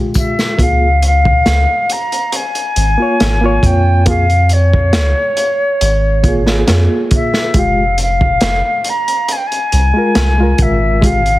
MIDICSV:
0, 0, Header, 1, 5, 480
1, 0, Start_track
1, 0, Tempo, 869565
1, 322, Time_signature, 4, 2, 24, 8
1, 6288, End_track
2, 0, Start_track
2, 0, Title_t, "Flute"
2, 0, Program_c, 0, 73
2, 97, Note_on_c, 0, 76, 93
2, 341, Note_on_c, 0, 77, 103
2, 350, Note_off_c, 0, 76, 0
2, 572, Note_off_c, 0, 77, 0
2, 584, Note_on_c, 0, 77, 118
2, 1058, Note_on_c, 0, 82, 114
2, 1067, Note_off_c, 0, 77, 0
2, 1300, Note_on_c, 0, 80, 113
2, 1308, Note_off_c, 0, 82, 0
2, 2019, Note_on_c, 0, 79, 107
2, 2027, Note_off_c, 0, 80, 0
2, 2251, Note_off_c, 0, 79, 0
2, 2255, Note_on_c, 0, 77, 102
2, 2498, Note_on_c, 0, 73, 105
2, 2506, Note_off_c, 0, 77, 0
2, 3786, Note_off_c, 0, 73, 0
2, 3948, Note_on_c, 0, 76, 98
2, 4186, Note_on_c, 0, 77, 102
2, 4195, Note_off_c, 0, 76, 0
2, 4414, Note_off_c, 0, 77, 0
2, 4423, Note_on_c, 0, 77, 112
2, 4906, Note_on_c, 0, 82, 106
2, 4914, Note_off_c, 0, 77, 0
2, 5144, Note_on_c, 0, 80, 98
2, 5152, Note_off_c, 0, 82, 0
2, 5171, Note_on_c, 0, 79, 92
2, 5180, Note_off_c, 0, 80, 0
2, 5224, Note_on_c, 0, 80, 113
2, 5232, Note_off_c, 0, 79, 0
2, 5860, Note_on_c, 0, 76, 100
2, 5869, Note_off_c, 0, 80, 0
2, 6101, Note_on_c, 0, 77, 104
2, 6109, Note_off_c, 0, 76, 0
2, 6288, Note_off_c, 0, 77, 0
2, 6288, End_track
3, 0, Start_track
3, 0, Title_t, "Reed electric piano"
3, 0, Program_c, 1, 4
3, 0, Note_on_c, 1, 56, 78
3, 0, Note_on_c, 1, 65, 66
3, 0, Note_on_c, 1, 67, 87
3, 294, Note_off_c, 1, 56, 0
3, 300, Note_off_c, 1, 65, 0
3, 307, Note_off_c, 1, 67, 0
3, 319, Note_on_c, 1, 58, 81
3, 334, Note_on_c, 1, 65, 75
3, 348, Note_on_c, 1, 68, 85
3, 471, Note_off_c, 1, 58, 0
3, 478, Note_off_c, 1, 65, 0
3, 485, Note_off_c, 1, 68, 0
3, 1642, Note_on_c, 1, 58, 89
3, 1654, Note_on_c, 1, 65, 88
3, 1668, Note_on_c, 1, 73, 99
3, 1855, Note_off_c, 1, 58, 0
3, 1861, Note_off_c, 1, 65, 0
3, 1868, Note_off_c, 1, 73, 0
3, 1882, Note_on_c, 1, 58, 96
3, 1896, Note_on_c, 1, 65, 87
3, 1908, Note_on_c, 1, 73, 109
3, 2212, Note_off_c, 1, 58, 0
3, 2219, Note_off_c, 1, 65, 0
3, 2225, Note_off_c, 1, 73, 0
3, 2240, Note_on_c, 1, 58, 90
3, 2251, Note_on_c, 1, 65, 89
3, 2264, Note_on_c, 1, 68, 109
3, 2337, Note_off_c, 1, 58, 0
3, 2342, Note_off_c, 1, 65, 0
3, 2349, Note_off_c, 1, 68, 0
3, 3440, Note_on_c, 1, 58, 73
3, 3451, Note_on_c, 1, 65, 71
3, 3468, Note_on_c, 1, 68, 82
3, 3537, Note_off_c, 1, 58, 0
3, 3543, Note_off_c, 1, 65, 0
3, 3551, Note_off_c, 1, 68, 0
3, 3566, Note_on_c, 1, 58, 95
3, 3581, Note_on_c, 1, 65, 83
3, 3595, Note_on_c, 1, 68, 108
3, 3654, Note_off_c, 1, 58, 0
3, 3661, Note_off_c, 1, 65, 0
3, 3668, Note_off_c, 1, 68, 0
3, 3682, Note_on_c, 1, 58, 80
3, 3694, Note_on_c, 1, 65, 71
3, 3706, Note_on_c, 1, 68, 87
3, 4135, Note_off_c, 1, 58, 0
3, 4141, Note_off_c, 1, 65, 0
3, 4147, Note_off_c, 1, 68, 0
3, 4164, Note_on_c, 1, 56, 86
3, 4175, Note_on_c, 1, 65, 75
3, 4187, Note_on_c, 1, 67, 93
3, 4313, Note_off_c, 1, 56, 0
3, 4318, Note_off_c, 1, 65, 0
3, 4325, Note_off_c, 1, 67, 0
3, 5485, Note_on_c, 1, 56, 99
3, 5500, Note_on_c, 1, 65, 84
3, 5510, Note_on_c, 1, 70, 109
3, 5697, Note_off_c, 1, 56, 0
3, 5704, Note_off_c, 1, 65, 0
3, 5709, Note_off_c, 1, 70, 0
3, 5730, Note_on_c, 1, 56, 94
3, 5743, Note_on_c, 1, 65, 92
3, 5756, Note_on_c, 1, 70, 104
3, 6055, Note_off_c, 1, 56, 0
3, 6062, Note_off_c, 1, 65, 0
3, 6069, Note_off_c, 1, 70, 0
3, 6078, Note_on_c, 1, 56, 98
3, 6093, Note_on_c, 1, 65, 84
3, 6104, Note_on_c, 1, 67, 103
3, 6176, Note_off_c, 1, 56, 0
3, 6183, Note_off_c, 1, 65, 0
3, 6189, Note_off_c, 1, 67, 0
3, 6288, End_track
4, 0, Start_track
4, 0, Title_t, "Sub bass"
4, 0, Program_c, 2, 38
4, 324, Note_on_c, 2, 37, 101
4, 781, Note_off_c, 2, 37, 0
4, 809, Note_on_c, 2, 37, 98
4, 917, Note_off_c, 2, 37, 0
4, 1526, Note_on_c, 2, 32, 98
4, 1635, Note_off_c, 2, 32, 0
4, 1773, Note_on_c, 2, 32, 100
4, 1981, Note_off_c, 2, 32, 0
4, 2005, Note_on_c, 2, 41, 86
4, 2729, Note_on_c, 2, 37, 107
4, 2738, Note_off_c, 2, 41, 0
4, 2837, Note_off_c, 2, 37, 0
4, 3208, Note_on_c, 2, 32, 103
4, 3663, Note_off_c, 2, 32, 0
4, 3689, Note_on_c, 2, 41, 78
4, 3797, Note_off_c, 2, 41, 0
4, 4165, Note_on_c, 2, 29, 103
4, 4622, Note_off_c, 2, 29, 0
4, 4650, Note_on_c, 2, 29, 102
4, 4757, Note_off_c, 2, 29, 0
4, 5369, Note_on_c, 2, 36, 105
4, 5477, Note_off_c, 2, 36, 0
4, 5606, Note_on_c, 2, 36, 94
4, 5817, Note_off_c, 2, 36, 0
4, 5845, Note_on_c, 2, 32, 88
4, 6288, Note_off_c, 2, 32, 0
4, 6288, End_track
5, 0, Start_track
5, 0, Title_t, "Drums"
5, 78, Note_on_c, 9, 54, 76
5, 85, Note_on_c, 9, 36, 86
5, 86, Note_on_c, 9, 42, 66
5, 134, Note_off_c, 9, 54, 0
5, 140, Note_off_c, 9, 36, 0
5, 142, Note_off_c, 9, 42, 0
5, 214, Note_on_c, 9, 38, 44
5, 214, Note_on_c, 9, 54, 43
5, 269, Note_off_c, 9, 38, 0
5, 270, Note_off_c, 9, 54, 0
5, 323, Note_on_c, 9, 36, 101
5, 327, Note_on_c, 9, 42, 91
5, 379, Note_off_c, 9, 36, 0
5, 382, Note_off_c, 9, 42, 0
5, 565, Note_on_c, 9, 42, 58
5, 620, Note_off_c, 9, 42, 0
5, 692, Note_on_c, 9, 36, 87
5, 747, Note_off_c, 9, 36, 0
5, 805, Note_on_c, 9, 38, 99
5, 806, Note_on_c, 9, 42, 77
5, 860, Note_off_c, 9, 38, 0
5, 861, Note_off_c, 9, 42, 0
5, 1046, Note_on_c, 9, 42, 68
5, 1101, Note_off_c, 9, 42, 0
5, 1171, Note_on_c, 9, 42, 43
5, 1226, Note_off_c, 9, 42, 0
5, 1283, Note_on_c, 9, 42, 86
5, 1338, Note_off_c, 9, 42, 0
5, 1408, Note_on_c, 9, 42, 39
5, 1463, Note_off_c, 9, 42, 0
5, 1524, Note_on_c, 9, 42, 62
5, 1579, Note_off_c, 9, 42, 0
5, 1768, Note_on_c, 9, 42, 83
5, 1770, Note_on_c, 9, 38, 107
5, 1823, Note_off_c, 9, 42, 0
5, 1825, Note_off_c, 9, 38, 0
5, 2003, Note_on_c, 9, 36, 92
5, 2006, Note_on_c, 9, 42, 62
5, 2058, Note_off_c, 9, 36, 0
5, 2061, Note_off_c, 9, 42, 0
5, 2240, Note_on_c, 9, 42, 86
5, 2244, Note_on_c, 9, 36, 104
5, 2296, Note_off_c, 9, 42, 0
5, 2299, Note_off_c, 9, 36, 0
5, 2371, Note_on_c, 9, 42, 40
5, 2427, Note_off_c, 9, 42, 0
5, 2480, Note_on_c, 9, 42, 59
5, 2535, Note_off_c, 9, 42, 0
5, 2613, Note_on_c, 9, 36, 80
5, 2669, Note_off_c, 9, 36, 0
5, 2721, Note_on_c, 9, 38, 120
5, 2722, Note_on_c, 9, 42, 82
5, 2776, Note_off_c, 9, 38, 0
5, 2777, Note_off_c, 9, 42, 0
5, 2963, Note_on_c, 9, 42, 70
5, 3018, Note_off_c, 9, 42, 0
5, 3208, Note_on_c, 9, 42, 78
5, 3263, Note_off_c, 9, 42, 0
5, 3443, Note_on_c, 9, 36, 89
5, 3443, Note_on_c, 9, 42, 57
5, 3498, Note_off_c, 9, 36, 0
5, 3498, Note_off_c, 9, 42, 0
5, 3569, Note_on_c, 9, 38, 50
5, 3624, Note_off_c, 9, 38, 0
5, 3685, Note_on_c, 9, 38, 124
5, 3685, Note_on_c, 9, 42, 91
5, 3740, Note_off_c, 9, 42, 0
5, 3741, Note_off_c, 9, 38, 0
5, 3923, Note_on_c, 9, 42, 65
5, 3926, Note_on_c, 9, 36, 90
5, 3979, Note_off_c, 9, 42, 0
5, 3982, Note_off_c, 9, 36, 0
5, 4050, Note_on_c, 9, 38, 48
5, 4105, Note_off_c, 9, 38, 0
5, 4162, Note_on_c, 9, 42, 83
5, 4163, Note_on_c, 9, 36, 113
5, 4217, Note_off_c, 9, 42, 0
5, 4218, Note_off_c, 9, 36, 0
5, 4404, Note_on_c, 9, 42, 68
5, 4459, Note_off_c, 9, 42, 0
5, 4531, Note_on_c, 9, 36, 87
5, 4587, Note_off_c, 9, 36, 0
5, 4640, Note_on_c, 9, 42, 90
5, 4644, Note_on_c, 9, 38, 118
5, 4695, Note_off_c, 9, 42, 0
5, 4700, Note_off_c, 9, 38, 0
5, 4882, Note_on_c, 9, 42, 64
5, 4937, Note_off_c, 9, 42, 0
5, 5011, Note_on_c, 9, 42, 45
5, 5067, Note_off_c, 9, 42, 0
5, 5125, Note_on_c, 9, 42, 89
5, 5180, Note_off_c, 9, 42, 0
5, 5253, Note_on_c, 9, 42, 38
5, 5308, Note_off_c, 9, 42, 0
5, 5367, Note_on_c, 9, 42, 63
5, 5422, Note_off_c, 9, 42, 0
5, 5604, Note_on_c, 9, 42, 77
5, 5605, Note_on_c, 9, 38, 121
5, 5659, Note_off_c, 9, 42, 0
5, 5660, Note_off_c, 9, 38, 0
5, 5842, Note_on_c, 9, 42, 70
5, 5844, Note_on_c, 9, 36, 104
5, 5897, Note_off_c, 9, 42, 0
5, 5899, Note_off_c, 9, 36, 0
5, 6085, Note_on_c, 9, 36, 103
5, 6091, Note_on_c, 9, 42, 80
5, 6140, Note_off_c, 9, 36, 0
5, 6146, Note_off_c, 9, 42, 0
5, 6214, Note_on_c, 9, 42, 41
5, 6269, Note_off_c, 9, 42, 0
5, 6288, End_track
0, 0, End_of_file